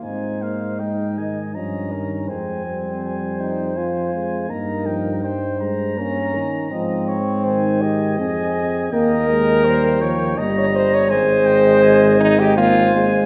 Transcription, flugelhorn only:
\new Staff \with { instrumentName = "Flugelhorn" } { \time 3/4 \key aes \major \tempo 4 = 81 c''4 ees''4 ees''8 bes'8 | c''8 c''2~ c''8 | bes'4 c''4 bes'8 r8 | ees''8 des''8 c''8 ees''4. |
ees''4 c''8 des''8 ees''4 | ees''2 c''4 | }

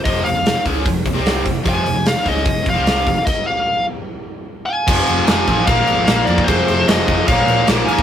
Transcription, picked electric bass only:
\new Staff \with { instrumentName = "Picked electric bass" } { \clef bass \time 4/4 \key f \minor \tempo 4 = 149 f,,8 f,,16 f,,8 r16 des,8 f,,8 f,,16 c,8. f,,16 r16 | f,,8 f,,16 f,,8 r16 des,8 f,,8 f,,16 c,8. f,,16 r16 | r1 | f,,8 f,,8 f,,8 a,,8 bes,,8 aes,,8 bes,,8 f,8 |
f,,8 f,,8 f,,8 f,,8 bes,,8 bes,8 bes,,8 g,,8 | }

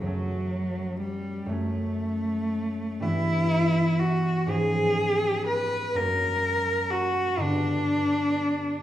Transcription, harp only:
\new Staff \with { instrumentName = "Harp" } { \clef bass \time 6/8 \key fis \phrygian \tempo 4. = 41 <fis, fis a cis'>4. <fis, fis a cis'>4. | <g, e b e'>4. <gis, eis b cis'>4. | <fis, fis ais cis'>4. <g, d b>4. | }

